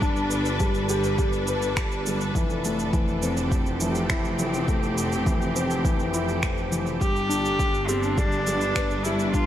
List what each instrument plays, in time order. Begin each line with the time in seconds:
Already playing: double bass section G1, felt piano G3 G4 B4, string section G3 D4 A4 B4
0.02 felt piano D4, kick, shaker
0.16 shaker
0.31 shaker
0.45 shaker
0.60 felt piano G3, kick, shaker
0.74 shaker
0.89 felt piano G4, shaker
1.04 shaker
1.18 felt piano G3, kick, shaker
1.33 shaker
1.47 felt piano B4, shaker
1.62 shaker
1.77 finger snap, kick, shaker
1.92 shaker
2.06 felt piano G3, shaker
2.21 shaker
2.35 double bass section F1, felt piano E3, kick, shaker
2.50 shaker
2.65 felt piano A3, shaker
2.79 shaker
2.88 string section C4
2.93 felt piano E3, kick, shaker
3.08 shaker
3.22 felt piano C4, shaker
3.37 string section G4, shaker
3.52 kick, shaker
3.66 shaker
3.80 felt piano E3, shaker
3.95 shaker
4.10 felt piano E4, finger snap, kick, shaker
4.25 shaker
4.39 felt piano E3, shaker
4.54 shaker
4.68 felt piano A3, kick, shaker
4.83 shaker
4.98 shaker
5.12 shaker
5.26 felt piano E3, kick, shaker
5.42 shaker
5.56 felt piano C4, shaker
5.71 shaker
5.85 felt piano E3, kick, shaker
5.99 shaker
6.14 felt piano E4, shaker
6.28 shaker
6.43 finger snap, kick, shaker
6.57 shaker
6.72 felt piano E3, shaker
6.86 shaker
7.00 double bass section G1, felt piano G3, string section G3, cello G4, kick, shaker
7.16 string section D4, shaker
7.29 felt piano D4, shaker
7.45 shaker
7.59 kick, shaker
7.74 shaker
7.88 cello C4, felt piano G4, shaker
8.03 shaker
8.18 felt piano G3, cello D4, kick, shaker
8.31 string section B4, shaker
8.47 felt piano G3, shaker
8.61 shaker
8.76 felt piano B4, finger snap, kick, shaker
8.90 shaker
9.05 felt piano G3, cello E4, shaker
9.19 shaker
9.34 felt piano D4, cello F4, kick, shaker